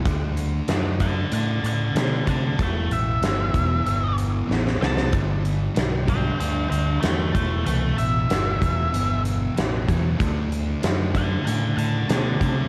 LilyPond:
<<
  \new Staff \with { instrumentName = "Lead electric guitar" } { \time 4/4 \key e \minor \tempo 4 = 95 r4. <fis'' a''>8 <fis'' a''>8 <fis'' a''>8 <fis'' a''>8 <fis'' a''>8 | <e'' a''>8 e''2 r4 a''8 | r4. <b' g''>8 <b' g''>8 <b' g''>8 <e'' a''>8 <e'' a''>8 | <e'' a''>8 e''2 r4. |
r4. <fis'' a''>8 <fis'' a''>8 <fis'' a''>8 <fis'' a''>8 <fis'' a''>8 | }
  \new Staff \with { instrumentName = "Distorted electric guitar" } { \clef bass \time 4/4 \key e \minor <d a d'>4 <d a d'>8 <d a d'>8 <d a d'>4 <d a d'>8 <d a d'>8 | <e, b, e>4 <e, b, e>8 <e, b, e>8 <e, b, e>4 <e, b, e>8 <e, b, e>8 | <g, d g>4 <g, d g>8 <g, d g>8 <g, d g>4 <g, d g>8 <e, b, e>8 | <e, b, e>4 <e, b, e>8 <e, b, e>8 <e, b, e>4 <e, b, e>8 <e, b, e>8 |
<d a d'>4 <d a d'>8 <d a d'>8 <d a d'>4 <d a d'>8 <d a d'>8 | }
  \new Staff \with { instrumentName = "Fingered electric bass" } { \clef bass \time 4/4 \key e \minor d,4 fis,4 a,8 a,8 b,8 c8 | e,,8 a,,8 g,,8 e,,8 g,,4 a,,8 c,8 | g,,4 b,,4 d,8 d,8 e,8 e,,8 | c,8 a,,8 g,,8 e,,8 g,,4 a,,8 e,8 |
d,4 fis,4 a,8 a,8 b,8 c8 | }
  \new DrumStaff \with { instrumentName = "Drums" } \drummode { \time 4/4 <hh bd>8 hh8 <hh sn>8 <hh bd>8 hh8 hh8 <hh sn>8 <hh bd>8 | <hh bd>8 hh8 <hh sn>8 <hh bd>8 hh8 hh8 sn16 sn16 sn16 sn16 | <hh bd>8 hh8 <hh sn>8 <hh bd>8 hh8 hh8 <hh sn>8 <hh bd>8 | hh8 hh8 <hh sn>8 <hh bd>8 hh8 hh8 <hh sn>8 <hh bd>8 |
<hh bd>8 hh8 <hh sn>8 <hh bd>8 hh8 hh8 <hh sn>8 <hh bd>8 | }
>>